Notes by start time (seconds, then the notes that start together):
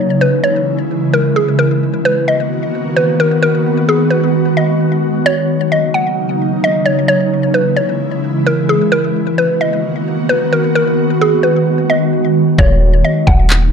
Already playing: C#3 E3 G#3 E4 C#5
0.21 B4
0.44 C#5
1.14 A#4
1.36 G#4
1.59 D#3 A#3 B3 F#4 A#4
2.05 B4
2.28 D#5
2.96 B4
3.20 A#4
3.42 G#3 F#4 A#4
3.89 G#4
4.10 B4
4.57 D#5
5.26 C#3 F#3 A#3 D#4 C#5
5.72 D#5
5.94 F#5
6.64 D#5
6.86 C#5
7.08 E3 G#3 E4 C#5
7.54 B4
7.76 C#5
8.47 A#4
8.69 G#4
8.92 D#3 A#3 B3 F#4 A#4
9.38 B4
9.61 D#5
10.29 B4
10.53 A#4
10.75 D#3 G#3 A#4
11.21 G#4
11.43 B4
11.90 D#5
12.58 D#1 C#3 F#3 A#3 D#4 C#5, kick
13.04 D#5
13.27 D#1 F#5, kick
13.50 clap